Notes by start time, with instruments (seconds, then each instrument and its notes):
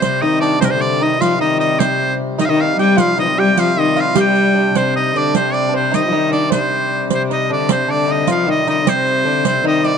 Already playing: harmonium C3 G3
0.02 viola da gamba C3, lute C4, shawm C5, riq
0.22 viola da gamba D#3, lute D#4, shawm D#5
0.40 lute D4, shawm D5, riq
0.61 viola da gamba C3, lute C4, shawm C5, riq
0.65 shawm A#4
0.70 viola da gamba C3 D3, lute C4, shawm C5
0.76 viola da gamba C3
0.81 viola da gamba D3, shawm D5, riq
1.01 viola da gamba D#3, lute D#4, shawm D#5
1.21 viola da gamba F3, lute F4, shawm F5, riq
1.39 viola da gamba D#3, lute D#4, shawm D#5
1.60 shawm D#5, riq
1.79 viola da gamba C3, lute C4, shawm C5, riq
2.38 viola da gamba D#3, lute D#4, shawm D#5, riq
2.45 viola da gamba D#3, lute D#4, shawm F5
2.49 shawm D#5
2.57 lute D#4, shawm F5
2.63 lute D#4
2.78 viola da gamba G3, lute G4, shawm G5, riq
2.97 harmonium C3 G3, viola da gamba F3, lute F4, shawm F5, riq
3.17 viola da gamba D#3, lute D#4, shawm D#5, riq
3.22 viola da gamba F3
3.26 viola da gamba D#3
3.38 viola da gamba G3, lute G4, shawm G5
3.57 viola da gamba F3, lute F4, shawm F5, riq
3.76 viola da gamba D#3, shawm D#5
3.96 lute F4, shawm F5, riq
4.15 viola da gamba G3, lute G4, riq
4.20 shawm G5
4.36 riq
4.55 lute D4
4.75 viola da gamba C3, lute C4, shawm C5, riq
4.96 lute D#4, shawm D#5
5.14 viola da gamba D3, lute D4, shawm D5, riq
5.35 viola da gamba C3, lute C4, shawm C5, riq
5.54 shawm D5, riq
5.69 lute D4
5.74 lute C4, shawm C5
5.91 viola da gamba D#3, lute D#4, shawm D#5, riq
6.07 viola da gamba F3
6.11 viola da gamba D#3, lute D#4
6.31 lute D4, shawm D5, riq
6.50 viola da gamba C3, lute C4, shawm C5, riq
7.10 viola da gamba C3, lute C4, riq
7.15 shawm C5
7.31 lute D#4, shawm D#5, riq
7.50 viola da gamba D3, lute D4, shawm D5
7.69 harmonium C3 G3, viola da gamba C3, lute C4, shawm C5, riq
7.88 viola da gamba D3, lute D4, shawm D5
8.08 lute D#4, shawm D#5
8.27 viola da gamba F3, lute F4, shawm F5, riq
8.46 viola da gamba D#3, lute D#4
8.51 shawm D#5
8.67 viola da gamba D#3, lute D#4, shawm D#5, riq
8.81 viola da gamba D3
8.87 viola da gamba C3, lute C4, shawm C5, riq
9.07 riq
9.24 viola da gamba D3, lute D4
9.45 viola da gamba C3, lute C4, shawm C5, riq
9.62 viola da gamba D#3, lute D#4
9.67 shawm D#5
9.84 shawm D5, riq